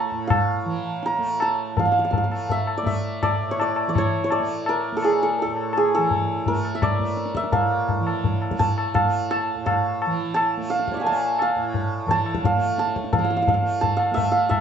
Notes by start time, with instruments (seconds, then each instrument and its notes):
Already playing: tanpura A2 E3 A3, santur F5 A5 C#6
0.11 tanpura A2
0.27 santur F5, tabla na, tabla ge
0.65 tanpura E3
1.03 santur A#5, tabla te
1.18 tanpura A3
1.40 santur A5, tabla na
1.76 tanpura E3, santur F5, tabla tin, tabla ge
1.86 santur F5
1.92 santur F5
1.99 santur F5
2.04 santur F5
2.11 santur F5, tabla tin, tabla ge
2.18 santur F5
2.24 santur F5
2.29 tanpura A3, tabla na
2.49 santur E5, tabla tin, tabla ge
2.67 tabla na
2.77 santur D5
2.83 tanpura A3, santur E5, tabla tin, tabla ge
3.23 santur D5, tabla na, tabla ge
3.35 tanpura A2
3.51 santur C#5
3.60 santur D5, tabla na
3.76 tabla na
3.87 tanpura E3, santur D5
3.95 santur C#5, tabla na, tabla ge
4.24 santur C#5
4.30 santur D5, tabla na
4.39 tanpura A3
4.66 santur A#4, tabla na
4.92 tanpura A3
4.97 santur A4
5.02 santur G#4, tabla na
5.23 santur A4
5.38 santur A4, tabla tin
5.44 tanpura A2
5.57 tabla na
5.73 tabla na
5.77 santur G#4
5.95 tanpura E3, santur A4
6.11 tabla tin, tabla ge
6.46 tanpura A3, santur A#4, tabla tin, tabla ge
6.65 tabla na
6.75 santur E5
6.82 santur D5, tabla na, tabla ge
6.99 tanpura A3, tabla ge
7.17 tabla te
7.26 tabla te
7.35 santur E5, tabla ke
7.44 tabla te
7.51 tanpura A2, santur F5, tabla tin, tabla ge
7.89 tabla tin, tabla ge
8.00 tanpura E3
8.07 tabla na
8.24 tabla tin, tabla ge
8.42 tabla na
8.51 tanpura A3, tabla ke
8.59 santur A5, tabla tin, tabla ge
8.78 tabla na
8.94 santur F5, tabla na, tabla ge
9.04 tanpura A3
9.31 santur A5, tabla na
9.55 tanpura A2
9.66 santur F5, tabla na, tabla ge
10.02 tabla na
10.06 tanpura E3
10.34 santur A5, tabla na
10.57 tanpura A3
10.70 santur F5, tabla te
10.79 tabla te
10.88 santur C#5, tabla ke
10.94 santur D5 E5, tabla te
11.00 santur F5 G#5
11.04 tanpura A3, santur A5, tabla tin
11.39 santur F5, tabla na
11.55 tanpura A2
11.74 tabla tin, tabla ge
12.06 tanpura E3, tabla tin, tabla ge
12.11 santur A5
12.26 tabla na
12.35 tabla ke
12.44 santur F5, tabla tin, tabla ge
12.55 tanpura A3
12.78 santur A5, tabla te
12.87 tabla te
12.96 tabla ke
13.04 tabla te
13.13 tanpura E3, santur F5, tabla tin, tabla ge
13.19 santur F5
13.24 santur F5
13.30 santur F5
13.37 santur F5
13.42 santur F5
13.48 santur F5, tabla tin, tabla ge
13.54 santur F5
13.62 tanpura A3
13.81 santur A5, tabla tin, tabla ge
13.97 santur F5, tabla na
14.11 tanpura A3, santur E5
14.17 tabla tin, tabla ge
14.32 santur F5
14.49 santur E5, tabla na, tabla ge